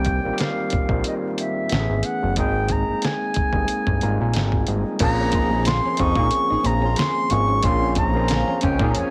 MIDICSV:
0, 0, Header, 1, 9, 480
1, 0, Start_track
1, 0, Tempo, 659341
1, 1722, Time_signature, 4, 2, 24, 8
1, 6628, End_track
2, 0, Start_track
2, 0, Title_t, "Flute"
2, 0, Program_c, 0, 73
2, 0, Note_on_c, 0, 79, 87
2, 291, Note_on_c, 0, 77, 76
2, 301, Note_off_c, 0, 79, 0
2, 766, Note_off_c, 0, 77, 0
2, 782, Note_on_c, 0, 75, 75
2, 834, Note_off_c, 0, 75, 0
2, 1016, Note_on_c, 0, 76, 81
2, 1495, Note_on_c, 0, 78, 82
2, 1506, Note_off_c, 0, 76, 0
2, 1728, Note_off_c, 0, 78, 0
2, 1737, Note_on_c, 0, 79, 91
2, 1979, Note_on_c, 0, 82, 79
2, 1990, Note_off_c, 0, 79, 0
2, 2218, Note_on_c, 0, 80, 84
2, 2229, Note_off_c, 0, 82, 0
2, 3410, Note_off_c, 0, 80, 0
2, 3651, Note_on_c, 0, 82, 106
2, 4129, Note_on_c, 0, 84, 97
2, 4139, Note_off_c, 0, 82, 0
2, 4373, Note_on_c, 0, 85, 109
2, 4384, Note_off_c, 0, 84, 0
2, 4850, Note_on_c, 0, 82, 93
2, 4861, Note_off_c, 0, 85, 0
2, 5086, Note_on_c, 0, 84, 102
2, 5097, Note_off_c, 0, 82, 0
2, 5320, Note_on_c, 0, 85, 104
2, 5331, Note_off_c, 0, 84, 0
2, 5566, Note_on_c, 0, 84, 104
2, 5577, Note_off_c, 0, 85, 0
2, 5801, Note_off_c, 0, 84, 0
2, 5805, Note_on_c, 0, 82, 92
2, 6291, Note_on_c, 0, 79, 84
2, 6302, Note_off_c, 0, 82, 0
2, 6476, Note_off_c, 0, 79, 0
2, 6481, Note_on_c, 0, 82, 58
2, 6538, Note_on_c, 0, 80, 82
2, 6548, Note_off_c, 0, 82, 0
2, 6628, Note_off_c, 0, 80, 0
2, 6628, End_track
3, 0, Start_track
3, 0, Title_t, "Brass ensemble"
3, 0, Program_c, 1, 61
3, 3650, Note_on_c, 1, 49, 77
3, 3650, Note_on_c, 1, 68, 76
3, 3650, Note_on_c, 1, 70, 72
3, 3652, Note_on_c, 1, 80, 84
3, 6628, Note_off_c, 1, 49, 0
3, 6628, Note_off_c, 1, 68, 0
3, 6628, Note_off_c, 1, 70, 0
3, 6628, Note_off_c, 1, 80, 0
3, 6628, End_track
4, 0, Start_track
4, 0, Title_t, "Clean electric guitar"
4, 0, Program_c, 2, 27
4, 3893, Note_on_c, 2, 65, 68
4, 3969, Note_off_c, 2, 65, 0
4, 4262, Note_on_c, 2, 61, 76
4, 4326, Note_off_c, 2, 61, 0
4, 4502, Note_on_c, 2, 63, 66
4, 4566, Note_off_c, 2, 63, 0
4, 4735, Note_on_c, 2, 63, 76
4, 4801, Note_off_c, 2, 63, 0
4, 4963, Note_on_c, 2, 61, 68
4, 5032, Note_off_c, 2, 61, 0
4, 5318, Note_on_c, 2, 65, 67
4, 5399, Note_off_c, 2, 65, 0
4, 5447, Note_on_c, 2, 61, 67
4, 5515, Note_off_c, 2, 61, 0
4, 5802, Note_on_c, 2, 65, 78
4, 5882, Note_off_c, 2, 65, 0
4, 6172, Note_on_c, 2, 61, 82
4, 6238, Note_off_c, 2, 61, 0
4, 6415, Note_on_c, 2, 63, 81
4, 6481, Note_off_c, 2, 63, 0
4, 6628, End_track
5, 0, Start_track
5, 0, Title_t, "Tine electric piano"
5, 0, Program_c, 3, 4
5, 0, Control_c, 3, 64, 127
5, 0, Note_on_c, 3, 51, 80
5, 0, Note_on_c, 3, 55, 70
5, 0, Note_on_c, 3, 58, 71
5, 0, Note_on_c, 3, 60, 72
5, 0, Note_on_c, 3, 67, 86
5, 147, Note_off_c, 3, 51, 0
5, 149, Note_off_c, 3, 55, 0
5, 152, Note_off_c, 3, 58, 0
5, 153, Note_off_c, 3, 60, 0
5, 154, Note_off_c, 3, 67, 0
5, 180, Note_on_c, 3, 51, 63
5, 184, Note_on_c, 3, 55, 60
5, 184, Note_on_c, 3, 58, 59
5, 189, Note_on_c, 3, 60, 58
5, 192, Note_on_c, 3, 65, 58
5, 225, Note_off_c, 3, 65, 0
5, 239, Note_on_c, 3, 67, 69
5, 616, Note_off_c, 3, 51, 0
5, 618, Note_off_c, 3, 55, 0
5, 619, Note_off_c, 3, 58, 0
5, 621, Note_off_c, 3, 60, 0
5, 646, Note_off_c, 3, 67, 0
5, 661, Note_on_c, 3, 51, 65
5, 663, Note_on_c, 3, 55, 59
5, 667, Note_on_c, 3, 58, 56
5, 672, Note_on_c, 3, 60, 59
5, 675, Note_on_c, 3, 65, 72
5, 1246, Note_off_c, 3, 51, 0
5, 1247, Note_off_c, 3, 55, 0
5, 1247, Note_on_c, 3, 52, 68
5, 1249, Note_off_c, 3, 58, 0
5, 1250, Control_c, 3, 64, 0
5, 1251, Note_off_c, 3, 60, 0
5, 1251, Note_on_c, 3, 57, 61
5, 1253, Note_off_c, 3, 65, 0
5, 1254, Note_on_c, 3, 59, 63
5, 1259, Note_on_c, 3, 61, 60
5, 1260, Note_on_c, 3, 66, 63
5, 1303, Note_off_c, 3, 66, 0
5, 1308, Note_on_c, 3, 68, 77
5, 1391, Control_c, 3, 64, 127
5, 1691, Note_off_c, 3, 52, 0
5, 1693, Note_off_c, 3, 57, 0
5, 1695, Note_off_c, 3, 59, 0
5, 1697, Note_off_c, 3, 61, 0
5, 1721, Note_off_c, 3, 68, 0
5, 1726, Note_on_c, 3, 56, 76
5, 1730, Note_on_c, 3, 58, 75
5, 1731, Control_c, 3, 64, 0
5, 1731, Note_on_c, 3, 60, 72
5, 1736, Note_on_c, 3, 63, 76
5, 1739, Note_on_c, 3, 68, 87
5, 1870, Control_c, 3, 64, 127
5, 2505, Note_off_c, 3, 56, 0
5, 2507, Note_off_c, 3, 58, 0
5, 2507, Note_off_c, 3, 60, 0
5, 2510, Note_off_c, 3, 63, 0
5, 2511, Note_off_c, 3, 68, 0
5, 2577, Note_on_c, 3, 56, 54
5, 2577, Note_on_c, 3, 58, 52
5, 2583, Note_on_c, 3, 60, 49
5, 2586, Note_on_c, 3, 63, 52
5, 2587, Note_on_c, 3, 68, 61
5, 2899, Note_off_c, 3, 56, 0
5, 2899, Note_off_c, 3, 58, 0
5, 2902, Note_off_c, 3, 60, 0
5, 2903, Note_off_c, 3, 63, 0
5, 2904, Note_off_c, 3, 68, 0
5, 2925, Note_on_c, 3, 55, 69
5, 2927, Note_on_c, 3, 58, 58
5, 2930, Note_on_c, 3, 60, 58
5, 2932, Note_on_c, 3, 82, 56
5, 2935, Note_on_c, 3, 63, 65
5, 2937, Note_on_c, 3, 65, 77
5, 3049, Note_off_c, 3, 82, 0
5, 3066, Note_on_c, 3, 80, 58
5, 3161, Note_off_c, 3, 80, 0
5, 3178, Note_on_c, 3, 79, 59
5, 3394, Note_off_c, 3, 79, 0
5, 3410, Note_on_c, 3, 75, 56
5, 3593, Note_off_c, 3, 55, 0
5, 3595, Note_off_c, 3, 58, 0
5, 3596, Note_off_c, 3, 60, 0
5, 3598, Note_off_c, 3, 63, 0
5, 3600, Note_off_c, 3, 65, 0
5, 3629, Note_off_c, 3, 75, 0
5, 3641, Note_on_c, 3, 53, 91
5, 3645, Note_on_c, 3, 58, 88
5, 3649, Note_on_c, 3, 60, 83
5, 3651, Note_on_c, 3, 61, 86
5, 3652, Control_c, 3, 64, 0
5, 3657, Note_on_c, 3, 68, 97
5, 3771, Control_c, 3, 64, 127
5, 4422, Note_off_c, 3, 53, 0
5, 4424, Note_off_c, 3, 58, 0
5, 4426, Note_off_c, 3, 60, 0
5, 4427, Note_off_c, 3, 61, 0
5, 4430, Note_off_c, 3, 68, 0
5, 4496, Note_on_c, 3, 53, 73
5, 4499, Note_on_c, 3, 58, 68
5, 4501, Note_on_c, 3, 60, 66
5, 4505, Note_on_c, 3, 61, 66
5, 4508, Note_on_c, 3, 68, 77
5, 5265, Note_off_c, 3, 53, 0
5, 5267, Note_off_c, 3, 58, 0
5, 5268, Note_off_c, 3, 60, 0
5, 5270, Note_off_c, 3, 61, 0
5, 5271, Note_off_c, 3, 68, 0
5, 5325, Note_on_c, 3, 53, 69
5, 5325, Note_on_c, 3, 58, 67
5, 5329, Note_on_c, 3, 60, 62
5, 5332, Note_on_c, 3, 61, 64
5, 5336, Note_on_c, 3, 68, 74
5, 5547, Note_off_c, 3, 53, 0
5, 5547, Note_off_c, 3, 58, 0
5, 5549, Note_off_c, 3, 60, 0
5, 5551, Note_off_c, 3, 61, 0
5, 5552, Note_off_c, 3, 68, 0
5, 5562, Note_on_c, 3, 53, 96
5, 5567, Note_on_c, 3, 58, 83
5, 5569, Note_on_c, 3, 60, 88
5, 5573, Note_on_c, 3, 61, 86
5, 5575, Note_on_c, 3, 65, 101
5, 5903, Note_off_c, 3, 53, 0
5, 5906, Note_off_c, 3, 58, 0
5, 5907, Note_off_c, 3, 60, 0
5, 5908, Note_off_c, 3, 61, 0
5, 5909, Note_off_c, 3, 65, 0
5, 5932, Note_on_c, 3, 53, 72
5, 5935, Note_on_c, 3, 58, 67
5, 5938, Note_on_c, 3, 60, 64
5, 5940, Note_on_c, 3, 61, 63
5, 5943, Note_on_c, 3, 65, 75
5, 6372, Note_off_c, 3, 53, 0
5, 6374, Note_off_c, 3, 58, 0
5, 6375, Note_off_c, 3, 60, 0
5, 6376, Note_off_c, 3, 61, 0
5, 6378, Note_off_c, 3, 65, 0
5, 6411, Note_on_c, 3, 53, 75
5, 6415, Note_on_c, 3, 58, 67
5, 6420, Note_on_c, 3, 60, 66
5, 6424, Note_on_c, 3, 61, 69
5, 6424, Note_on_c, 3, 68, 86
5, 6628, Note_off_c, 3, 53, 0
5, 6628, Note_off_c, 3, 58, 0
5, 6628, Note_off_c, 3, 60, 0
5, 6628, Note_off_c, 3, 61, 0
5, 6628, Note_off_c, 3, 68, 0
5, 6628, End_track
6, 0, Start_track
6, 0, Title_t, "Horn section"
6, 0, Program_c, 4, 61
6, 3769, Note_on_c, 4, 61, 75
6, 3770, Note_on_c, 4, 49, 64
6, 3858, Note_off_c, 4, 49, 0
6, 3858, Note_off_c, 4, 61, 0
6, 3876, Note_on_c, 4, 51, 63
6, 3876, Note_on_c, 4, 63, 73
6, 4070, Note_off_c, 4, 51, 0
6, 4071, Note_off_c, 4, 63, 0
6, 4118, Note_on_c, 4, 53, 69
6, 4118, Note_on_c, 4, 65, 73
6, 4311, Note_off_c, 4, 65, 0
6, 4312, Note_off_c, 4, 53, 0
6, 4356, Note_on_c, 4, 63, 85
6, 4357, Note_on_c, 4, 51, 72
6, 4550, Note_off_c, 4, 63, 0
6, 4551, Note_off_c, 4, 51, 0
6, 4728, Note_on_c, 4, 56, 62
6, 4728, Note_on_c, 4, 68, 68
6, 4817, Note_off_c, 4, 56, 0
6, 4817, Note_off_c, 4, 68, 0
6, 4965, Note_on_c, 4, 65, 67
6, 4966, Note_on_c, 4, 53, 60
6, 5160, Note_off_c, 4, 65, 0
6, 5161, Note_off_c, 4, 53, 0
6, 5680, Note_on_c, 4, 61, 72
6, 5682, Note_on_c, 4, 49, 67
6, 5773, Note_off_c, 4, 49, 0
6, 5773, Note_off_c, 4, 61, 0
6, 5790, Note_on_c, 4, 63, 70
6, 5792, Note_on_c, 4, 51, 66
6, 5987, Note_off_c, 4, 63, 0
6, 5988, Note_off_c, 4, 51, 0
6, 6030, Note_on_c, 4, 53, 72
6, 6031, Note_on_c, 4, 65, 87
6, 6227, Note_off_c, 4, 53, 0
6, 6227, Note_off_c, 4, 65, 0
6, 6271, Note_on_c, 4, 61, 78
6, 6273, Note_on_c, 4, 49, 73
6, 6628, Note_off_c, 4, 49, 0
6, 6628, Note_off_c, 4, 61, 0
6, 6628, End_track
7, 0, Start_track
7, 0, Title_t, "Analog synth bass"
7, 0, Program_c, 5, 38
7, 0, Note_on_c, 5, 36, 95
7, 146, Note_off_c, 5, 36, 0
7, 186, Note_on_c, 5, 34, 46
7, 226, Note_off_c, 5, 34, 0
7, 534, Note_on_c, 5, 34, 47
7, 583, Note_off_c, 5, 34, 0
7, 651, Note_on_c, 5, 34, 80
7, 751, Note_off_c, 5, 34, 0
7, 1251, Note_on_c, 5, 33, 91
7, 1366, Note_off_c, 5, 33, 0
7, 1381, Note_on_c, 5, 32, 80
7, 1476, Note_off_c, 5, 32, 0
7, 1623, Note_on_c, 5, 30, 84
7, 1717, Note_off_c, 5, 30, 0
7, 1731, Note_on_c, 5, 32, 99
7, 2068, Note_off_c, 5, 32, 0
7, 2103, Note_on_c, 5, 31, 46
7, 2144, Note_off_c, 5, 31, 0
7, 2454, Note_on_c, 5, 31, 44
7, 2503, Note_off_c, 5, 31, 0
7, 2573, Note_on_c, 5, 31, 80
7, 2671, Note_off_c, 5, 31, 0
7, 2818, Note_on_c, 5, 31, 81
7, 2915, Note_off_c, 5, 31, 0
7, 2936, Note_on_c, 5, 32, 86
7, 3048, Note_off_c, 5, 32, 0
7, 3064, Note_on_c, 5, 34, 85
7, 3158, Note_off_c, 5, 34, 0
7, 3171, Note_on_c, 5, 32, 86
7, 3384, Note_off_c, 5, 32, 0
7, 3409, Note_on_c, 5, 32, 73
7, 3524, Note_off_c, 5, 32, 0
7, 3645, Note_on_c, 5, 34, 106
7, 4225, Note_off_c, 5, 34, 0
7, 4367, Note_on_c, 5, 41, 96
7, 4482, Note_off_c, 5, 41, 0
7, 4486, Note_on_c, 5, 46, 95
7, 4588, Note_off_c, 5, 46, 0
7, 4739, Note_on_c, 5, 34, 52
7, 4781, Note_off_c, 5, 34, 0
7, 4842, Note_on_c, 5, 34, 87
7, 5059, Note_off_c, 5, 34, 0
7, 5326, Note_on_c, 5, 32, 91
7, 5542, Note_off_c, 5, 32, 0
7, 5562, Note_on_c, 5, 34, 110
7, 6144, Note_off_c, 5, 34, 0
7, 6289, Note_on_c, 5, 37, 90
7, 6404, Note_off_c, 5, 37, 0
7, 6408, Note_on_c, 5, 46, 90
7, 6509, Note_off_c, 5, 46, 0
7, 6527, Note_on_c, 5, 41, 49
7, 6578, Note_off_c, 5, 41, 0
7, 6628, End_track
8, 0, Start_track
8, 0, Title_t, "Muted clean electric guitar strokes"
8, 4366, Note_on_c, 9, 29, 46
8, 4439, Note_off_c, 9, 29, 0
8, 4841, Note_on_c, 9, 29, 46
8, 4914, Note_off_c, 9, 29, 0
8, 5078, Note_on_c, 9, 29, 44
8, 5151, Note_off_c, 9, 29, 0
8, 6281, Note_on_c, 9, 29, 47
8, 6354, Note_off_c, 9, 29, 0
8, 6628, End_track
9, 0, Start_track
9, 0, Title_t, "Drums"
9, 34, Note_on_c, 9, 42, 53
9, 43, Note_on_c, 9, 36, 79
9, 107, Note_off_c, 9, 42, 0
9, 116, Note_off_c, 9, 36, 0
9, 276, Note_on_c, 9, 42, 69
9, 295, Note_on_c, 9, 38, 86
9, 349, Note_off_c, 9, 42, 0
9, 368, Note_off_c, 9, 38, 0
9, 511, Note_on_c, 9, 42, 58
9, 530, Note_on_c, 9, 36, 87
9, 584, Note_off_c, 9, 42, 0
9, 602, Note_off_c, 9, 36, 0
9, 648, Note_on_c, 9, 36, 81
9, 720, Note_off_c, 9, 36, 0
9, 758, Note_on_c, 9, 42, 70
9, 831, Note_off_c, 9, 42, 0
9, 1004, Note_on_c, 9, 42, 55
9, 1077, Note_off_c, 9, 42, 0
9, 1234, Note_on_c, 9, 42, 58
9, 1255, Note_on_c, 9, 38, 95
9, 1306, Note_off_c, 9, 42, 0
9, 1328, Note_off_c, 9, 38, 0
9, 1477, Note_on_c, 9, 42, 57
9, 1550, Note_off_c, 9, 42, 0
9, 1719, Note_on_c, 9, 42, 73
9, 1725, Note_on_c, 9, 36, 98
9, 1792, Note_off_c, 9, 42, 0
9, 1798, Note_off_c, 9, 36, 0
9, 1955, Note_on_c, 9, 42, 57
9, 1963, Note_on_c, 9, 36, 75
9, 2028, Note_off_c, 9, 42, 0
9, 2036, Note_off_c, 9, 36, 0
9, 2198, Note_on_c, 9, 42, 70
9, 2217, Note_on_c, 9, 38, 80
9, 2271, Note_off_c, 9, 42, 0
9, 2290, Note_off_c, 9, 38, 0
9, 2433, Note_on_c, 9, 42, 56
9, 2449, Note_on_c, 9, 36, 83
9, 2506, Note_off_c, 9, 42, 0
9, 2522, Note_off_c, 9, 36, 0
9, 2567, Note_on_c, 9, 36, 75
9, 2640, Note_off_c, 9, 36, 0
9, 2678, Note_on_c, 9, 42, 73
9, 2751, Note_off_c, 9, 42, 0
9, 2815, Note_on_c, 9, 36, 88
9, 2888, Note_off_c, 9, 36, 0
9, 2921, Note_on_c, 9, 42, 49
9, 2994, Note_off_c, 9, 42, 0
9, 3156, Note_on_c, 9, 42, 59
9, 3178, Note_on_c, 9, 38, 90
9, 3229, Note_off_c, 9, 42, 0
9, 3250, Note_off_c, 9, 38, 0
9, 3291, Note_on_c, 9, 36, 79
9, 3364, Note_off_c, 9, 36, 0
9, 3397, Note_on_c, 9, 42, 59
9, 3470, Note_off_c, 9, 42, 0
9, 3635, Note_on_c, 9, 42, 88
9, 3636, Note_on_c, 9, 62, 28
9, 3640, Note_on_c, 9, 49, 96
9, 3642, Note_on_c, 9, 36, 108
9, 3708, Note_off_c, 9, 42, 0
9, 3709, Note_off_c, 9, 62, 0
9, 3713, Note_off_c, 9, 49, 0
9, 3714, Note_off_c, 9, 36, 0
9, 3871, Note_on_c, 9, 42, 64
9, 3877, Note_on_c, 9, 62, 27
9, 3880, Note_on_c, 9, 36, 88
9, 3944, Note_off_c, 9, 42, 0
9, 3949, Note_off_c, 9, 62, 0
9, 3952, Note_off_c, 9, 36, 0
9, 4009, Note_on_c, 9, 63, 62
9, 4082, Note_off_c, 9, 63, 0
9, 4114, Note_on_c, 9, 42, 79
9, 4123, Note_on_c, 9, 62, 28
9, 4133, Note_on_c, 9, 38, 98
9, 4187, Note_off_c, 9, 42, 0
9, 4195, Note_off_c, 9, 62, 0
9, 4206, Note_off_c, 9, 38, 0
9, 4257, Note_on_c, 9, 64, 55
9, 4330, Note_off_c, 9, 64, 0
9, 4347, Note_on_c, 9, 42, 66
9, 4356, Note_on_c, 9, 62, 29
9, 4364, Note_on_c, 9, 36, 100
9, 4420, Note_off_c, 9, 42, 0
9, 4429, Note_off_c, 9, 62, 0
9, 4437, Note_off_c, 9, 36, 0
9, 4481, Note_on_c, 9, 36, 95
9, 4554, Note_off_c, 9, 36, 0
9, 4591, Note_on_c, 9, 42, 82
9, 4603, Note_on_c, 9, 62, 31
9, 4664, Note_off_c, 9, 42, 0
9, 4676, Note_off_c, 9, 62, 0
9, 4831, Note_on_c, 9, 62, 35
9, 4831, Note_on_c, 9, 63, 78
9, 4837, Note_on_c, 9, 42, 62
9, 4904, Note_off_c, 9, 62, 0
9, 4904, Note_off_c, 9, 63, 0
9, 4910, Note_off_c, 9, 42, 0
9, 5069, Note_on_c, 9, 42, 70
9, 5082, Note_on_c, 9, 63, 67
9, 5090, Note_on_c, 9, 38, 110
9, 5142, Note_off_c, 9, 42, 0
9, 5155, Note_off_c, 9, 63, 0
9, 5163, Note_off_c, 9, 38, 0
9, 5314, Note_on_c, 9, 42, 68
9, 5318, Note_on_c, 9, 63, 65
9, 5318, Note_on_c, 9, 64, 68
9, 5387, Note_off_c, 9, 42, 0
9, 5391, Note_off_c, 9, 63, 0
9, 5391, Note_off_c, 9, 64, 0
9, 5552, Note_on_c, 9, 42, 86
9, 5558, Note_on_c, 9, 36, 116
9, 5624, Note_off_c, 9, 42, 0
9, 5631, Note_off_c, 9, 36, 0
9, 5790, Note_on_c, 9, 42, 63
9, 5797, Note_on_c, 9, 36, 90
9, 5799, Note_on_c, 9, 62, 27
9, 5863, Note_off_c, 9, 42, 0
9, 5870, Note_off_c, 9, 36, 0
9, 5872, Note_off_c, 9, 62, 0
9, 5924, Note_on_c, 9, 63, 62
9, 5997, Note_off_c, 9, 63, 0
9, 6030, Note_on_c, 9, 42, 82
9, 6039, Note_on_c, 9, 62, 30
9, 6049, Note_on_c, 9, 38, 96
9, 6103, Note_off_c, 9, 42, 0
9, 6112, Note_off_c, 9, 62, 0
9, 6121, Note_off_c, 9, 38, 0
9, 6171, Note_on_c, 9, 64, 61
9, 6243, Note_off_c, 9, 64, 0
9, 6268, Note_on_c, 9, 42, 66
9, 6284, Note_on_c, 9, 36, 96
9, 6341, Note_off_c, 9, 42, 0
9, 6357, Note_off_c, 9, 36, 0
9, 6403, Note_on_c, 9, 36, 97
9, 6475, Note_off_c, 9, 36, 0
9, 6513, Note_on_c, 9, 42, 88
9, 6519, Note_on_c, 9, 62, 29
9, 6586, Note_off_c, 9, 42, 0
9, 6591, Note_off_c, 9, 62, 0
9, 6628, End_track
0, 0, End_of_file